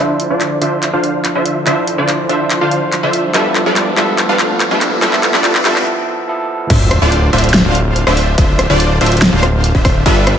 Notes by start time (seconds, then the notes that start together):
Already playing: F3
0.00 D3 D4 E4 F4 C5 E5, riser
0.20 closed hi-hat
0.30 D3 D4 F4 C5 D5
0.41 clap, closed hi-hat
0.60 D3 F3 D4 F4 C5 E5, closed hi-hat
0.83 clap, closed hi-hat
0.93 D3 D4 F4 C5 F5
1.04 closed hi-hat
1.25 clap, closed hi-hat
1.35 D3 D4 F4 C5 E5
1.46 closed hi-hat
1.65 D3 F3 D4 E4 F4 C5 E5, clap, closed hi-hat
1.69 C5
1.88 closed hi-hat
1.98 D3 D4 F4 C5 D5
2.08 clap, closed hi-hat
2.28 D3 F3 D4 F4 C5 E5, closed hi-hat
2.50 clap, closed hi-hat
2.61 D3 D4 F4 C5 F5
2.71 closed hi-hat
2.92 clap, closed hi-hat
3.03 D3 D4 F4 C5 E5
3.13 closed hi-hat
3.32 F3 G3 B3 D4 E4 F4 A4 B4 E5, clap, closed hi-hat
3.36 A4
3.55 clap, closed hi-hat
3.66 G3 D4 F4 A4 B4 D5
3.76 clap, closed hi-hat
3.95 F3 G3 B3 D4 F4 A4 B4 E5, clap, closed hi-hat
3.99 A4
4.18 clap, closed hi-hat
4.29 G3 D4 F4 A4 B4 F5
4.39 clap, closed hi-hat
4.60 clap, closed hi-hat
4.71 G3 D4 F4 A4 B4 E5
4.81 clap, closed hi-hat
5.00 F3 G3 B3 D4 E4 F4 A4 B4 E5, clap, closed hi-hat
5.04 A4
5.13 clap
5.23 clap, closed hi-hat
5.34 G3 D4 F4 A4 B4 D5, clap
5.44 clap, closed hi-hat
5.55 clap
5.63 F3 G3 B3 D4 E4 F4 A4 B4 E5, clap, closed hi-hat
5.76 clap
6.27 F3 B3 E4 A4
6.70 D1 D3 D4 F4 C5 E5, kick, closed hi-hat, crash, sub drop
6.91 cross-stick, closed hi-hat
7.02 D1 D3 D4 F4 C5 D5
7.12 closed hi-hat
7.33 D1 D3 D4 F4 C5 E5, closed hi-hat
7.38 closed hi-hat
7.44 closed hi-hat
7.49 closed hi-hat
7.54 snare, closed hi-hat
7.65 D1 D3 D4 F4 C5 F5
7.75 closed hi-hat
7.96 closed hi-hat
8.07 D1 D3 D4 F4 C5 E5, cross-stick
8.17 open hi-hat
8.38 D1 D3 D4 F4 C5 E5, kick, closed hi-hat
8.59 cross-stick, closed hi-hat
8.70 D1 D3 D4 F4 C5 D5
8.80 closed hi-hat
9.01 D1 D3 D4 F4 C5 E5, closed hi-hat
9.06 closed hi-hat
9.12 closed hi-hat
9.17 closed hi-hat
9.22 snare, closed hi-hat
9.33 D1 D3 D4 F4 C5 F5
9.43 cross-stick, closed hi-hat
9.64 closed hi-hat
9.75 D1 D3 D4 F4 C5 E5, kick
9.85 kick, cross-stick, open hi-hat
10.06 G1 G3 D4 F4 A4 B4 E5, kick, closed hi-hat
10.27 cross-stick, closed hi-hat